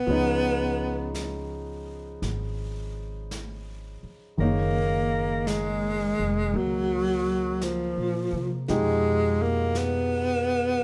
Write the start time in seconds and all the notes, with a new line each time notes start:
Already playing: B3
0.07 C#2 F3 G#3 B3 C#4, brush sweep
0.12 D#4
1.15 brush sweep, snare, hi-hat pedal
2.22 G#1, brush sweep, snare
3.31 brush sweep, snare, hi-hat pedal
4.03 muted upright bass stroke
4.37 F#1 D#3 G#3 A#3 C#5, brush sweep
4.42 D#4
5.47 G#3, brush sweep, snare, hi-hat pedal
6.19 F1
6.54 C#2 F#3 A#3, brush sweep
7.61 F3, brush sweep, snare, hi-hat pedal
7.97 A#2
8.33 C3
8.68 F2 B2 F3 G#3 D#4 G4, brush sweep, snare
9.42 A#3
9.75 B3, brush sweep, snare, hi-hat pedal